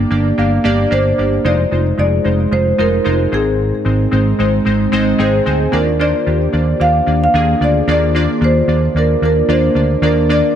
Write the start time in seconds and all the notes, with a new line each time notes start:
Already playing: G2 A#3 D4 G4 D5
0.10 G1 A#3 D4 G4 D5
0.38 G1 A#3 D4 G4 F5
0.64 G1 A#3 D4 G4 D5
0.91 G1 A#3 D4 G4 C5 D5
1.18 G1 A#3 D4 G4 D5
1.44 F1 G#3 D#4 F4 C5 D5
1.71 F1 G#3 D#4 F4 C5
1.98 F1 G#3 D#4 F4 G#4 D5
2.24 F1 G#3 D#4 F4 C5
2.51 F1 G#3 D#4 F4 C5
2.78 F1 G#3 D#4 F4 A#4 C5
3.04 F1 G#3 D#4 F4 C5
3.32 G#1 G#2 G#3 C4 D#4 G#4 C5
3.85 G#1 G#3 C4 D#4 C5
4.11 G#1 G#3 C4 D#4 C5
4.39 G#1 G#3 C4 D#4 C5
4.65 G#1 G#3 C4 D#4 C5
4.92 G#1 G#3 C4 D#4 C5 D#5
5.19 G#1 G#3 C4 D#4 G#4 C5 G5
5.46 D2 G#3 C4 D#4 C5 G#5
5.72 D#2 D#3 A#3 D4 F4 A#4 D5
5.99 A#3 D4 F4 C5 D5
6.26 D#2 A#3 D4 F4 G4
6.52 D#2 A#3 D4 F4 D5
6.80 D#2 A#3 D4 F4 D5 F5
7.06 D#2 A#3 D4 F4 D5
7.24 F5
7.34 D#2 A#3 D4 F4 G#4
7.61 D2 A#3 D4 F4 D5
7.88 D#2 D#3 A#3 D4 F4 D5
8.15 A#3 D4 F4 D5
8.41 D#2 A#3 D4 F4 C5 D5
8.68 D#2 A#3 D4 F4 D5
8.95 D#2 A#3 D4 F4 A#4 D5
9.22 D#2 A#3 D4 F4 A#4 D5
9.49 D#2 A#3 D4 F4 C5 D5
9.75 D2 A#3 D4 F4 D5
10.02 D#2 D#3 A#3 D4 F4 A#4 D5
10.29 A#3 D4 F4 D5